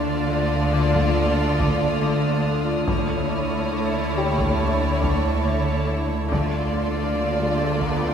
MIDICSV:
0, 0, Header, 1, 13, 480
1, 0, Start_track
1, 0, Key_signature, -1, "minor"
1, 0, Tempo, 858369
1, 1607, Time_signature, 4, 2, 24, 8
1, 4551, End_track
2, 0, Start_track
2, 0, Title_t, "Violin section"
2, 0, Program_c, 0, 48
2, 0, Note_on_c, 0, 89, 41
2, 184, Note_on_c, 0, 87, 44
2, 2499, Note_off_c, 0, 87, 0
2, 2499, Note_on_c, 0, 86, 44
2, 3259, Note_off_c, 0, 89, 0
2, 3268, Note_off_c, 0, 86, 0
2, 4551, End_track
3, 0, Start_track
3, 0, Title_t, "Violin section"
3, 0, Program_c, 1, 48
3, 0, Note_on_c, 1, 74, 61
3, 1585, Note_off_c, 1, 74, 0
3, 1613, Note_on_c, 1, 73, 61
3, 3504, Note_off_c, 1, 73, 0
3, 3529, Note_on_c, 1, 74, 59
3, 4551, Note_off_c, 1, 74, 0
3, 4551, End_track
4, 0, Start_track
4, 0, Title_t, "Felt piano"
4, 0, Program_c, 2, 0
4, 0, Control_c, 2, 64, 127
4, 1618, Control_c, 2, 64, 0
4, 1698, Control_c, 2, 64, 127
4, 2333, Note_on_c, 2, 67, 37
4, 2336, Note_on_c, 2, 79, 36
4, 3532, Control_c, 2, 64, 0
4, 3626, Control_c, 2, 64, 127
4, 3747, Note_off_c, 2, 67, 0
4, 3748, Note_off_c, 2, 79, 0
4, 4551, End_track
5, 0, Start_track
5, 0, Title_t, "Synth texture"
5, 0, Program_c, 3, 99
5, 0, Note_on_c, 3, 62, 51
5, 0, Note_on_c, 3, 65, 52
5, 0, Note_on_c, 3, 81, 51
5, 1584, Note_off_c, 3, 81, 0
5, 1606, Note_off_c, 3, 65, 0
5, 1608, Note_off_c, 3, 62, 0
5, 1614, Note_on_c, 3, 64, 52
5, 1615, Note_on_c, 3, 81, 53
5, 1616, Note_on_c, 3, 73, 58
5, 3505, Note_off_c, 3, 81, 0
5, 3518, Note_on_c, 3, 65, 55
5, 3519, Note_on_c, 3, 81, 55
5, 3522, Note_on_c, 3, 74, 53
5, 3527, Note_off_c, 3, 64, 0
5, 3528, Note_off_c, 3, 73, 0
5, 4551, Note_off_c, 3, 65, 0
5, 4551, Note_off_c, 3, 74, 0
5, 4551, Note_off_c, 3, 81, 0
5, 4551, End_track
6, 0, Start_track
6, 0, Title_t, "Violin section"
6, 0, Program_c, 4, 48
6, 0, Note_on_c, 4, 65, 57
6, 1585, Note_off_c, 4, 65, 0
6, 1610, Note_on_c, 4, 64, 57
6, 3502, Note_off_c, 4, 64, 0
6, 3528, Note_on_c, 4, 65, 53
6, 4551, Note_off_c, 4, 65, 0
6, 4551, End_track
7, 0, Start_track
7, 0, Title_t, "Viola section"
7, 0, Program_c, 5, 48
7, 0, Note_on_c, 5, 57, 59
7, 1584, Note_off_c, 5, 57, 0
7, 1608, Note_on_c, 5, 57, 56
7, 3502, Note_off_c, 5, 57, 0
7, 3531, Note_on_c, 5, 57, 52
7, 4551, Note_off_c, 5, 57, 0
7, 4551, End_track
8, 0, Start_track
8, 0, Title_t, "Cello section"
8, 0, Program_c, 6, 48
8, 0, Note_on_c, 6, 50, 66
8, 1583, Note_off_c, 6, 50, 0
8, 1611, Note_on_c, 6, 50, 59
8, 3503, Note_off_c, 6, 50, 0
8, 3524, Note_on_c, 6, 50, 57
8, 4551, Note_off_c, 6, 50, 0
8, 4551, End_track
9, 0, Start_track
9, 0, Title_t, "Harp"
9, 0, Program_c, 7, 46
9, 0, Note_on_c, 7, 50, 71
9, 0, Note_on_c, 7, 62, 44
9, 160, Note_off_c, 7, 50, 0
9, 166, Note_on_c, 7, 50, 51
9, 401, Note_off_c, 7, 50, 0
9, 408, Note_on_c, 7, 50, 76
9, 635, Note_off_c, 7, 50, 0
9, 642, Note_on_c, 7, 50, 47
9, 877, Note_off_c, 7, 62, 0
9, 884, Note_on_c, 7, 62, 52
9, 1119, Note_off_c, 7, 50, 0
9, 1126, Note_on_c, 7, 50, 72
9, 1365, Note_off_c, 7, 62, 0
9, 1372, Note_on_c, 7, 62, 48
9, 1601, Note_off_c, 7, 50, 0
9, 1607, Note_on_c, 7, 50, 69
9, 1628, Note_off_c, 7, 62, 0
9, 1843, Note_on_c, 7, 62, 43
9, 2072, Note_off_c, 7, 50, 0
9, 2079, Note_on_c, 7, 50, 49
9, 2310, Note_off_c, 7, 50, 0
9, 2317, Note_on_c, 7, 50, 68
9, 2555, Note_off_c, 7, 50, 0
9, 2562, Note_on_c, 7, 50, 44
9, 2790, Note_off_c, 7, 62, 0
9, 2797, Note_on_c, 7, 62, 49
9, 3031, Note_off_c, 7, 50, 0
9, 3038, Note_on_c, 7, 50, 63
9, 3272, Note_off_c, 7, 62, 0
9, 3279, Note_on_c, 7, 62, 43
9, 3507, Note_off_c, 7, 50, 0
9, 3514, Note_on_c, 7, 50, 65
9, 3754, Note_off_c, 7, 62, 0
9, 3761, Note_on_c, 7, 62, 42
9, 3991, Note_off_c, 7, 50, 0
9, 3998, Note_on_c, 7, 50, 41
9, 4237, Note_off_c, 7, 50, 0
9, 4244, Note_on_c, 7, 50, 56
9, 4476, Note_off_c, 7, 50, 0
9, 4483, Note_on_c, 7, 50, 40
9, 4551, Note_off_c, 7, 50, 0
9, 4551, Note_off_c, 7, 62, 0
9, 4551, End_track
10, 0, Start_track
10, 0, Title_t, "Double bass section"
10, 0, Program_c, 8, 48
10, 0, Note_on_c, 8, 38, 56
10, 1582, Note_off_c, 8, 38, 0
10, 1602, Note_on_c, 8, 38, 55
10, 3499, Note_off_c, 8, 38, 0
10, 3520, Note_on_c, 8, 38, 52
10, 4551, Note_off_c, 8, 38, 0
10, 4551, End_track
11, 0, Start_track
11, 0, Title_t, "Synth drone"
11, 0, Program_c, 10, 95
11, 0, Note_on_c, 10, 38, 70
11, 1584, Note_off_c, 10, 38, 0
11, 1605, Note_on_c, 10, 38, 64
11, 3500, Note_off_c, 10, 38, 0
11, 3530, Note_on_c, 10, 38, 68
11, 4551, Note_off_c, 10, 38, 0
11, 4551, End_track
12, 0, Start_track
12, 0, Title_t, "Riser"
12, 0, Program_c, 11, 103
12, 3529, Note_on_c, 11, 60, 49
12, 4551, Note_off_c, 11, 60, 0
12, 4551, End_track
13, 0, Start_track
13, 0, Title_t, "Taiko and cinematic ensemble drums"
13, 532, Note_on_c, 9, 41, 60
13, 588, Note_off_c, 9, 41, 0
13, 894, Note_on_c, 9, 41, 67
13, 950, Note_off_c, 9, 41, 0
13, 1608, Note_on_c, 9, 41, 82
13, 1664, Note_off_c, 9, 41, 0
13, 2450, Note_on_c, 9, 41, 65
13, 2506, Note_off_c, 9, 41, 0
13, 2813, Note_on_c, 9, 41, 69
13, 2869, Note_off_c, 9, 41, 0
13, 3535, Note_on_c, 9, 41, 77
13, 3591, Note_off_c, 9, 41, 0
13, 4368, Note_on_c, 9, 41, 59
13, 4424, Note_off_c, 9, 41, 0
13, 4551, End_track
0, 0, End_of_file